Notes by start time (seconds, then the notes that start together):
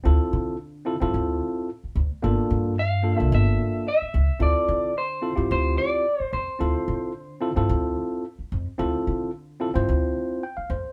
0.04 D2 C4 E4 F4 A4
0.33 D3
0.85 C4 E4 F4 A4
1.00 G2 C4 E4 F4 A4
1.14 D2
1.84 muted upright bass stroke
1.96 D2
2.22 G1 A#3 D4 F4 A4
2.51 G2
2.79 F5
3.02 A#3 D4 F4 A4
3.16 A#3 D4 F4 A4 E5
3.20 C2
3.32 G1 E5
3.88 E5
4.02 muted upright bass stroke
4.14 C#2
4.40 D2 C4 E4 F4 A4 D5
4.68 D3
4.98 C5
5.22 C4 E4 F4 A4
5.35 G2 C4 E4 F4 G4
5.51 D2 C5
5.78 D5
6.20 C5, muted upright bass stroke
6.33 F2 C5
6.59 D2 C4 E4 F4 A4
6.88 D3
7.41 C4 E4 F4 A4
7.56 G2 C4 E4 F4 A4
7.69 D2
8.39 muted upright bass stroke
8.52 F2
8.78 D2 C4 E4 F4 A4
9.07 D3
9.60 C4 E4 F4 A4
9.74 G2 C4 E4 F4 C5
9.89 D2
10.43 G5
10.57 F5, muted upright bass stroke
10.70 F2 C5